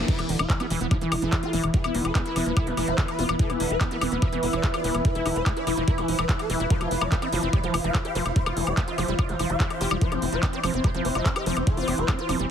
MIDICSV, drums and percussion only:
0, 0, Header, 1, 2, 480
1, 0, Start_track
1, 0, Tempo, 413793
1, 97, Time_signature, 4, 2, 24, 8
1, 14507, End_track
2, 0, Start_track
2, 0, Title_t, "Drums"
2, 97, Note_on_c, 9, 36, 112
2, 97, Note_on_c, 9, 42, 76
2, 97, Note_on_c, 9, 49, 109
2, 213, Note_off_c, 9, 36, 0
2, 213, Note_off_c, 9, 42, 0
2, 213, Note_off_c, 9, 49, 0
2, 217, Note_on_c, 9, 42, 69
2, 217, Note_on_c, 9, 76, 40
2, 333, Note_off_c, 9, 42, 0
2, 333, Note_off_c, 9, 76, 0
2, 337, Note_on_c, 9, 46, 104
2, 453, Note_off_c, 9, 46, 0
2, 457, Note_on_c, 9, 42, 72
2, 457, Note_on_c, 9, 76, 80
2, 573, Note_off_c, 9, 42, 0
2, 573, Note_off_c, 9, 76, 0
2, 577, Note_on_c, 9, 36, 116
2, 577, Note_on_c, 9, 39, 122
2, 577, Note_on_c, 9, 42, 70
2, 693, Note_off_c, 9, 36, 0
2, 693, Note_off_c, 9, 39, 0
2, 693, Note_off_c, 9, 42, 0
2, 697, Note_on_c, 9, 42, 72
2, 697, Note_on_c, 9, 76, 43
2, 813, Note_off_c, 9, 42, 0
2, 813, Note_off_c, 9, 76, 0
2, 817, Note_on_c, 9, 46, 113
2, 933, Note_off_c, 9, 46, 0
2, 937, Note_on_c, 9, 42, 69
2, 1053, Note_off_c, 9, 42, 0
2, 1057, Note_on_c, 9, 36, 126
2, 1057, Note_on_c, 9, 42, 67
2, 1057, Note_on_c, 9, 76, 40
2, 1173, Note_off_c, 9, 36, 0
2, 1173, Note_off_c, 9, 42, 0
2, 1173, Note_off_c, 9, 76, 0
2, 1176, Note_on_c, 9, 42, 72
2, 1292, Note_off_c, 9, 42, 0
2, 1297, Note_on_c, 9, 46, 105
2, 1297, Note_on_c, 9, 76, 78
2, 1413, Note_off_c, 9, 46, 0
2, 1413, Note_off_c, 9, 76, 0
2, 1417, Note_on_c, 9, 42, 70
2, 1533, Note_off_c, 9, 42, 0
2, 1537, Note_on_c, 9, 36, 115
2, 1537, Note_on_c, 9, 39, 127
2, 1537, Note_on_c, 9, 42, 69
2, 1537, Note_on_c, 9, 76, 40
2, 1653, Note_off_c, 9, 36, 0
2, 1653, Note_off_c, 9, 39, 0
2, 1653, Note_off_c, 9, 42, 0
2, 1653, Note_off_c, 9, 76, 0
2, 1657, Note_on_c, 9, 42, 73
2, 1773, Note_off_c, 9, 42, 0
2, 1777, Note_on_c, 9, 46, 102
2, 1893, Note_off_c, 9, 46, 0
2, 1897, Note_on_c, 9, 42, 73
2, 1897, Note_on_c, 9, 76, 43
2, 2013, Note_off_c, 9, 42, 0
2, 2013, Note_off_c, 9, 76, 0
2, 2017, Note_on_c, 9, 36, 118
2, 2017, Note_on_c, 9, 42, 73
2, 2133, Note_off_c, 9, 36, 0
2, 2133, Note_off_c, 9, 42, 0
2, 2137, Note_on_c, 9, 42, 64
2, 2137, Note_on_c, 9, 76, 72
2, 2253, Note_off_c, 9, 42, 0
2, 2253, Note_off_c, 9, 76, 0
2, 2257, Note_on_c, 9, 46, 103
2, 2373, Note_off_c, 9, 46, 0
2, 2377, Note_on_c, 9, 42, 62
2, 2377, Note_on_c, 9, 76, 37
2, 2493, Note_off_c, 9, 42, 0
2, 2493, Note_off_c, 9, 76, 0
2, 2497, Note_on_c, 9, 36, 127
2, 2497, Note_on_c, 9, 39, 123
2, 2497, Note_on_c, 9, 42, 70
2, 2613, Note_off_c, 9, 36, 0
2, 2613, Note_off_c, 9, 39, 0
2, 2613, Note_off_c, 9, 42, 0
2, 2617, Note_on_c, 9, 42, 73
2, 2733, Note_off_c, 9, 42, 0
2, 2737, Note_on_c, 9, 46, 112
2, 2737, Note_on_c, 9, 76, 38
2, 2853, Note_off_c, 9, 46, 0
2, 2853, Note_off_c, 9, 76, 0
2, 2857, Note_on_c, 9, 42, 63
2, 2973, Note_off_c, 9, 42, 0
2, 2977, Note_on_c, 9, 36, 127
2, 2977, Note_on_c, 9, 42, 70
2, 2977, Note_on_c, 9, 76, 75
2, 3093, Note_off_c, 9, 36, 0
2, 3093, Note_off_c, 9, 42, 0
2, 3093, Note_off_c, 9, 76, 0
2, 3097, Note_on_c, 9, 42, 73
2, 3213, Note_off_c, 9, 42, 0
2, 3217, Note_on_c, 9, 46, 110
2, 3217, Note_on_c, 9, 76, 38
2, 3333, Note_off_c, 9, 46, 0
2, 3333, Note_off_c, 9, 76, 0
2, 3337, Note_on_c, 9, 42, 65
2, 3453, Note_off_c, 9, 42, 0
2, 3457, Note_on_c, 9, 36, 121
2, 3457, Note_on_c, 9, 39, 127
2, 3457, Note_on_c, 9, 42, 68
2, 3573, Note_off_c, 9, 36, 0
2, 3573, Note_off_c, 9, 39, 0
2, 3573, Note_off_c, 9, 42, 0
2, 3577, Note_on_c, 9, 42, 73
2, 3577, Note_on_c, 9, 76, 41
2, 3693, Note_off_c, 9, 42, 0
2, 3693, Note_off_c, 9, 76, 0
2, 3697, Note_on_c, 9, 46, 109
2, 3813, Note_off_c, 9, 46, 0
2, 3817, Note_on_c, 9, 42, 69
2, 3817, Note_on_c, 9, 76, 78
2, 3933, Note_off_c, 9, 42, 0
2, 3933, Note_off_c, 9, 76, 0
2, 3937, Note_on_c, 9, 36, 118
2, 3937, Note_on_c, 9, 42, 70
2, 4053, Note_off_c, 9, 36, 0
2, 4053, Note_off_c, 9, 42, 0
2, 4057, Note_on_c, 9, 42, 63
2, 4057, Note_on_c, 9, 76, 38
2, 4173, Note_off_c, 9, 42, 0
2, 4173, Note_off_c, 9, 76, 0
2, 4177, Note_on_c, 9, 46, 112
2, 4293, Note_off_c, 9, 46, 0
2, 4297, Note_on_c, 9, 42, 63
2, 4413, Note_off_c, 9, 42, 0
2, 4417, Note_on_c, 9, 36, 126
2, 4417, Note_on_c, 9, 39, 124
2, 4417, Note_on_c, 9, 42, 66
2, 4417, Note_on_c, 9, 76, 40
2, 4533, Note_off_c, 9, 36, 0
2, 4533, Note_off_c, 9, 39, 0
2, 4533, Note_off_c, 9, 42, 0
2, 4533, Note_off_c, 9, 76, 0
2, 4537, Note_on_c, 9, 42, 67
2, 4653, Note_off_c, 9, 42, 0
2, 4657, Note_on_c, 9, 46, 109
2, 4657, Note_on_c, 9, 76, 75
2, 4773, Note_off_c, 9, 46, 0
2, 4773, Note_off_c, 9, 76, 0
2, 4777, Note_on_c, 9, 42, 63
2, 4893, Note_off_c, 9, 42, 0
2, 4897, Note_on_c, 9, 36, 127
2, 4897, Note_on_c, 9, 42, 65
2, 4897, Note_on_c, 9, 76, 37
2, 5013, Note_off_c, 9, 36, 0
2, 5013, Note_off_c, 9, 42, 0
2, 5013, Note_off_c, 9, 76, 0
2, 5017, Note_on_c, 9, 42, 69
2, 5133, Note_off_c, 9, 42, 0
2, 5137, Note_on_c, 9, 46, 110
2, 5253, Note_off_c, 9, 46, 0
2, 5257, Note_on_c, 9, 42, 63
2, 5257, Note_on_c, 9, 76, 38
2, 5373, Note_off_c, 9, 42, 0
2, 5373, Note_off_c, 9, 76, 0
2, 5377, Note_on_c, 9, 36, 122
2, 5377, Note_on_c, 9, 39, 122
2, 5377, Note_on_c, 9, 42, 70
2, 5493, Note_off_c, 9, 36, 0
2, 5493, Note_off_c, 9, 39, 0
2, 5493, Note_off_c, 9, 42, 0
2, 5497, Note_on_c, 9, 42, 69
2, 5497, Note_on_c, 9, 76, 80
2, 5613, Note_off_c, 9, 42, 0
2, 5613, Note_off_c, 9, 76, 0
2, 5617, Note_on_c, 9, 46, 110
2, 5733, Note_off_c, 9, 46, 0
2, 5737, Note_on_c, 9, 42, 65
2, 5737, Note_on_c, 9, 76, 39
2, 5853, Note_off_c, 9, 42, 0
2, 5853, Note_off_c, 9, 76, 0
2, 5857, Note_on_c, 9, 36, 121
2, 5857, Note_on_c, 9, 42, 69
2, 5973, Note_off_c, 9, 36, 0
2, 5973, Note_off_c, 9, 42, 0
2, 5977, Note_on_c, 9, 42, 65
2, 6093, Note_off_c, 9, 42, 0
2, 6097, Note_on_c, 9, 46, 105
2, 6097, Note_on_c, 9, 76, 38
2, 6213, Note_off_c, 9, 46, 0
2, 6213, Note_off_c, 9, 76, 0
2, 6217, Note_on_c, 9, 42, 65
2, 6333, Note_off_c, 9, 42, 0
2, 6337, Note_on_c, 9, 36, 127
2, 6337, Note_on_c, 9, 39, 120
2, 6337, Note_on_c, 9, 42, 64
2, 6337, Note_on_c, 9, 76, 75
2, 6453, Note_off_c, 9, 36, 0
2, 6453, Note_off_c, 9, 39, 0
2, 6453, Note_off_c, 9, 42, 0
2, 6453, Note_off_c, 9, 76, 0
2, 6457, Note_on_c, 9, 42, 67
2, 6573, Note_off_c, 9, 42, 0
2, 6577, Note_on_c, 9, 46, 112
2, 6577, Note_on_c, 9, 76, 39
2, 6693, Note_off_c, 9, 46, 0
2, 6693, Note_off_c, 9, 76, 0
2, 6697, Note_on_c, 9, 42, 59
2, 6813, Note_off_c, 9, 42, 0
2, 6817, Note_on_c, 9, 36, 125
2, 6817, Note_on_c, 9, 42, 66
2, 6933, Note_off_c, 9, 36, 0
2, 6933, Note_off_c, 9, 42, 0
2, 6937, Note_on_c, 9, 42, 63
2, 6937, Note_on_c, 9, 76, 39
2, 7053, Note_off_c, 9, 42, 0
2, 7053, Note_off_c, 9, 76, 0
2, 7057, Note_on_c, 9, 46, 109
2, 7173, Note_off_c, 9, 46, 0
2, 7177, Note_on_c, 9, 42, 61
2, 7177, Note_on_c, 9, 76, 76
2, 7293, Note_off_c, 9, 42, 0
2, 7293, Note_off_c, 9, 76, 0
2, 7297, Note_on_c, 9, 36, 120
2, 7297, Note_on_c, 9, 39, 125
2, 7297, Note_on_c, 9, 42, 66
2, 7413, Note_off_c, 9, 36, 0
2, 7413, Note_off_c, 9, 39, 0
2, 7413, Note_off_c, 9, 42, 0
2, 7417, Note_on_c, 9, 42, 64
2, 7417, Note_on_c, 9, 76, 40
2, 7533, Note_off_c, 9, 42, 0
2, 7533, Note_off_c, 9, 76, 0
2, 7537, Note_on_c, 9, 46, 110
2, 7653, Note_off_c, 9, 46, 0
2, 7657, Note_on_c, 9, 42, 61
2, 7773, Note_off_c, 9, 42, 0
2, 7777, Note_on_c, 9, 36, 121
2, 7777, Note_on_c, 9, 42, 68
2, 7893, Note_off_c, 9, 36, 0
2, 7893, Note_off_c, 9, 42, 0
2, 7897, Note_on_c, 9, 42, 65
2, 7897, Note_on_c, 9, 76, 38
2, 8013, Note_off_c, 9, 42, 0
2, 8013, Note_off_c, 9, 76, 0
2, 8017, Note_on_c, 9, 46, 100
2, 8133, Note_off_c, 9, 46, 0
2, 8137, Note_on_c, 9, 76, 78
2, 8253, Note_off_c, 9, 76, 0
2, 8257, Note_on_c, 9, 36, 118
2, 8257, Note_on_c, 9, 39, 117
2, 8257, Note_on_c, 9, 42, 63
2, 8373, Note_off_c, 9, 36, 0
2, 8373, Note_off_c, 9, 39, 0
2, 8373, Note_off_c, 9, 42, 0
2, 8377, Note_on_c, 9, 42, 70
2, 8377, Note_on_c, 9, 76, 43
2, 8493, Note_off_c, 9, 42, 0
2, 8493, Note_off_c, 9, 76, 0
2, 8497, Note_on_c, 9, 46, 106
2, 8613, Note_off_c, 9, 46, 0
2, 8617, Note_on_c, 9, 42, 61
2, 8733, Note_off_c, 9, 42, 0
2, 8737, Note_on_c, 9, 36, 125
2, 8737, Note_on_c, 9, 42, 64
2, 8737, Note_on_c, 9, 76, 41
2, 8853, Note_off_c, 9, 36, 0
2, 8853, Note_off_c, 9, 42, 0
2, 8853, Note_off_c, 9, 76, 0
2, 8857, Note_on_c, 9, 42, 68
2, 8973, Note_off_c, 9, 42, 0
2, 8977, Note_on_c, 9, 46, 103
2, 8977, Note_on_c, 9, 76, 78
2, 9093, Note_off_c, 9, 46, 0
2, 9093, Note_off_c, 9, 76, 0
2, 9097, Note_on_c, 9, 42, 60
2, 9213, Note_off_c, 9, 42, 0
2, 9217, Note_on_c, 9, 36, 110
2, 9217, Note_on_c, 9, 39, 120
2, 9217, Note_on_c, 9, 42, 68
2, 9217, Note_on_c, 9, 76, 44
2, 9333, Note_off_c, 9, 36, 0
2, 9333, Note_off_c, 9, 39, 0
2, 9333, Note_off_c, 9, 42, 0
2, 9333, Note_off_c, 9, 76, 0
2, 9337, Note_on_c, 9, 42, 69
2, 9453, Note_off_c, 9, 42, 0
2, 9457, Note_on_c, 9, 46, 109
2, 9573, Note_off_c, 9, 46, 0
2, 9577, Note_on_c, 9, 42, 66
2, 9577, Note_on_c, 9, 76, 40
2, 9693, Note_off_c, 9, 42, 0
2, 9693, Note_off_c, 9, 76, 0
2, 9697, Note_on_c, 9, 36, 113
2, 9697, Note_on_c, 9, 42, 70
2, 9813, Note_off_c, 9, 36, 0
2, 9813, Note_off_c, 9, 42, 0
2, 9817, Note_on_c, 9, 42, 64
2, 9817, Note_on_c, 9, 76, 84
2, 9933, Note_off_c, 9, 42, 0
2, 9933, Note_off_c, 9, 76, 0
2, 9937, Note_on_c, 9, 46, 106
2, 10053, Note_off_c, 9, 46, 0
2, 10057, Note_on_c, 9, 42, 64
2, 10057, Note_on_c, 9, 76, 43
2, 10173, Note_off_c, 9, 42, 0
2, 10173, Note_off_c, 9, 76, 0
2, 10177, Note_on_c, 9, 36, 117
2, 10177, Note_on_c, 9, 39, 119
2, 10177, Note_on_c, 9, 42, 66
2, 10293, Note_off_c, 9, 36, 0
2, 10293, Note_off_c, 9, 39, 0
2, 10293, Note_off_c, 9, 42, 0
2, 10297, Note_on_c, 9, 42, 70
2, 10413, Note_off_c, 9, 42, 0
2, 10417, Note_on_c, 9, 46, 108
2, 10417, Note_on_c, 9, 76, 44
2, 10533, Note_off_c, 9, 46, 0
2, 10533, Note_off_c, 9, 76, 0
2, 10537, Note_on_c, 9, 42, 61
2, 10653, Note_off_c, 9, 42, 0
2, 10657, Note_on_c, 9, 36, 116
2, 10657, Note_on_c, 9, 42, 69
2, 10657, Note_on_c, 9, 76, 82
2, 10773, Note_off_c, 9, 36, 0
2, 10773, Note_off_c, 9, 42, 0
2, 10773, Note_off_c, 9, 76, 0
2, 10777, Note_on_c, 9, 42, 65
2, 10893, Note_off_c, 9, 42, 0
2, 10897, Note_on_c, 9, 46, 105
2, 10897, Note_on_c, 9, 76, 40
2, 11013, Note_off_c, 9, 46, 0
2, 11013, Note_off_c, 9, 76, 0
2, 11017, Note_on_c, 9, 42, 62
2, 11133, Note_off_c, 9, 42, 0
2, 11137, Note_on_c, 9, 36, 113
2, 11137, Note_on_c, 9, 39, 123
2, 11137, Note_on_c, 9, 42, 72
2, 11253, Note_off_c, 9, 36, 0
2, 11253, Note_off_c, 9, 39, 0
2, 11253, Note_off_c, 9, 42, 0
2, 11257, Note_on_c, 9, 42, 66
2, 11257, Note_on_c, 9, 76, 44
2, 11373, Note_off_c, 9, 42, 0
2, 11373, Note_off_c, 9, 76, 0
2, 11377, Note_on_c, 9, 46, 108
2, 11493, Note_off_c, 9, 46, 0
2, 11497, Note_on_c, 9, 42, 66
2, 11497, Note_on_c, 9, 76, 90
2, 11613, Note_off_c, 9, 42, 0
2, 11613, Note_off_c, 9, 76, 0
2, 11617, Note_on_c, 9, 36, 112
2, 11617, Note_on_c, 9, 42, 76
2, 11733, Note_off_c, 9, 36, 0
2, 11733, Note_off_c, 9, 42, 0
2, 11737, Note_on_c, 9, 42, 67
2, 11737, Note_on_c, 9, 76, 42
2, 11853, Note_off_c, 9, 42, 0
2, 11853, Note_off_c, 9, 76, 0
2, 11856, Note_on_c, 9, 46, 100
2, 11972, Note_off_c, 9, 46, 0
2, 11977, Note_on_c, 9, 42, 69
2, 12093, Note_off_c, 9, 42, 0
2, 12097, Note_on_c, 9, 36, 120
2, 12097, Note_on_c, 9, 39, 115
2, 12097, Note_on_c, 9, 42, 69
2, 12097, Note_on_c, 9, 76, 44
2, 12213, Note_off_c, 9, 36, 0
2, 12213, Note_off_c, 9, 39, 0
2, 12213, Note_off_c, 9, 42, 0
2, 12213, Note_off_c, 9, 76, 0
2, 12217, Note_on_c, 9, 42, 73
2, 12333, Note_off_c, 9, 42, 0
2, 12337, Note_on_c, 9, 46, 105
2, 12337, Note_on_c, 9, 76, 84
2, 12453, Note_off_c, 9, 46, 0
2, 12453, Note_off_c, 9, 76, 0
2, 12457, Note_on_c, 9, 42, 65
2, 12573, Note_off_c, 9, 42, 0
2, 12577, Note_on_c, 9, 36, 118
2, 12577, Note_on_c, 9, 42, 70
2, 12577, Note_on_c, 9, 76, 42
2, 12693, Note_off_c, 9, 36, 0
2, 12693, Note_off_c, 9, 42, 0
2, 12693, Note_off_c, 9, 76, 0
2, 12697, Note_on_c, 9, 42, 69
2, 12813, Note_off_c, 9, 42, 0
2, 12817, Note_on_c, 9, 46, 100
2, 12933, Note_off_c, 9, 46, 0
2, 12937, Note_on_c, 9, 42, 67
2, 12937, Note_on_c, 9, 76, 42
2, 13053, Note_off_c, 9, 42, 0
2, 13053, Note_off_c, 9, 76, 0
2, 13057, Note_on_c, 9, 36, 115
2, 13057, Note_on_c, 9, 39, 127
2, 13057, Note_on_c, 9, 42, 71
2, 13173, Note_off_c, 9, 36, 0
2, 13173, Note_off_c, 9, 39, 0
2, 13173, Note_off_c, 9, 42, 0
2, 13177, Note_on_c, 9, 42, 75
2, 13177, Note_on_c, 9, 76, 89
2, 13293, Note_off_c, 9, 42, 0
2, 13293, Note_off_c, 9, 76, 0
2, 13297, Note_on_c, 9, 46, 103
2, 13413, Note_off_c, 9, 46, 0
2, 13417, Note_on_c, 9, 42, 72
2, 13417, Note_on_c, 9, 76, 44
2, 13533, Note_off_c, 9, 42, 0
2, 13533, Note_off_c, 9, 76, 0
2, 13537, Note_on_c, 9, 36, 118
2, 13537, Note_on_c, 9, 42, 74
2, 13653, Note_off_c, 9, 36, 0
2, 13653, Note_off_c, 9, 42, 0
2, 13657, Note_on_c, 9, 46, 59
2, 13773, Note_off_c, 9, 46, 0
2, 13777, Note_on_c, 9, 46, 101
2, 13777, Note_on_c, 9, 76, 41
2, 13893, Note_off_c, 9, 46, 0
2, 13893, Note_off_c, 9, 76, 0
2, 13897, Note_on_c, 9, 42, 68
2, 14013, Note_off_c, 9, 42, 0
2, 14017, Note_on_c, 9, 36, 118
2, 14017, Note_on_c, 9, 39, 117
2, 14017, Note_on_c, 9, 42, 71
2, 14017, Note_on_c, 9, 76, 81
2, 14133, Note_off_c, 9, 36, 0
2, 14133, Note_off_c, 9, 39, 0
2, 14133, Note_off_c, 9, 42, 0
2, 14133, Note_off_c, 9, 76, 0
2, 14137, Note_on_c, 9, 42, 72
2, 14253, Note_off_c, 9, 42, 0
2, 14257, Note_on_c, 9, 46, 103
2, 14257, Note_on_c, 9, 76, 43
2, 14373, Note_off_c, 9, 46, 0
2, 14373, Note_off_c, 9, 76, 0
2, 14377, Note_on_c, 9, 42, 68
2, 14493, Note_off_c, 9, 42, 0
2, 14507, End_track
0, 0, End_of_file